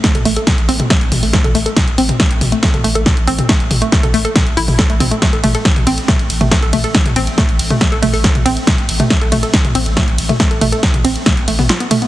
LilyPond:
<<
  \new Staff \with { instrumentName = "Synth arpeggio sound" } { \time 4/4 \key a \minor \tempo 4 = 139 a16 a'16 a16 a'16 r8 c'16 r16 a16 r8 a16 a16 a'16 a16 a'16 | r8 c'16 r16 a16 r8 a16 a16 a'16 a16 a'16 r8 c'16 r16 | a16 r8 a16 a16 a'16 a16 a'16 r8 e'16 r16 a'16 a16 c'16 a16 | a16 a'16 a16 a'16 r8 c'16 r16 a16 r8 a16 a16 a'16 a16 a'16 |
r8 c'16 r16 a16 r8 a16 a16 a'16 a16 a'16 r8 c'16 r16 | a16 r8 a16 a16 a'16 a16 a'16 r8 c'16 r16 a16 r8 a16 | a16 a'16 a16 a'16 r8 c'16 r16 a16 r16 a16 b16 f'16 b16 a16 b16 | }
  \new Staff \with { instrumentName = "Sub bass" } { \clef bass \time 4/4 \key a \minor r16 a,,16 a,,16 r8 a,,16 a,,16 r8 a,,16 a,,16 a,,16 r16 a,,16 a,,16 r16 | r16 a,,16 a,,16 r8 a,,16 a,,16 r8 a,,16 a,,16 a,,16 r16 a,,16 a,,16 r16 | r16 a,,16 a,,16 r8 a,,16 a,,16 r8 a,,16 a,,16 a,,16 r16 a,,16 a,,16 r16 | r16 a,,16 a,,16 r8 a,,16 a,,16 r8 a,,16 a,,16 a,,16 r16 a,,16 a,,16 r16 |
r16 a,,16 a,,16 r8 a,,16 a,,16 r8 a,,16 a,,16 a,,16 r16 a,,16 a,,16 r16 | r16 a,,16 a,,16 r8 a,,16 a,,16 r8 a,,16 a,,16 a,,16 r16 a,,16 a,,16 r16 | r16 a,,16 a,,16 r8 a,,16 a,,16 r8 a,,16 a,,16 a,,16 r4 | }
  \new DrumStaff \with { instrumentName = "Drums" } \drummode { \time 4/4 <hh bd sn>16 <hh toml>16 hho16 hh16 <hh bd sn toml>16 hh16 hho16 <hh toml>16 <hh bd sn>16 hh16 <hho toml>16 hho16 <hh bd sn>16 <hh toml>16 hho16 hh16 | <hh bd sn toml>16 hh16 hho16 <hh toml>16 <hh bd sn>16 hh16 <hho toml>16 hh16 <hh bd sn>16 <hh toml>16 hho16 hh16 <hh bd sn toml>16 hh16 hho16 <hh toml>16 | <hh bd sn>16 hh16 <hho toml>16 hh16 <hh bd sn>16 <hh toml>16 hho16 hh16 <hh bd sn toml>16 hh16 hho16 <hho toml>16 <hh bd sn>16 hh16 <hho toml>16 hh16 | <hh bd sn>16 hh16 <hho cymr toml>16 hh16 <hh bd sn>16 <hh toml>16 <hho cymr>16 hh16 <hh bd sn toml>16 hh16 <hho cymr>16 <hh toml>16 <hh bd sn>16 hh16 <hho cymr toml>16 hh16 |
<hh bd sn>16 <hh toml>16 <hho cymr>16 hh16 <hh bd sn toml>16 hh16 <hho cymr>16 <hh toml>16 <hh bd sn>16 hh16 <hho cymr toml>16 hho16 <hh bd sn>16 <hh toml>16 <hho cymr>16 hh16 | <hh bd sn toml>16 hh16 <hho cymr>16 <hh toml>16 <hh bd sn>16 hh16 <hho cymr toml>16 hh16 <hh bd sn>16 <hh toml>16 <hho cymr>16 hh16 <hh bd sn toml>16 hh16 <hho cymr>16 <hh toml>16 | <hh bd sn>16 hh16 <hho cymr toml>16 hh16 <hh bd sn>16 <hh toml>16 <hho cymr>16 hh16 <hh bd sn toml>16 hh16 <hho cymr>16 <hho toml>16 <hh sn>16 hh16 <hho cymr toml>16 hh16 | }
>>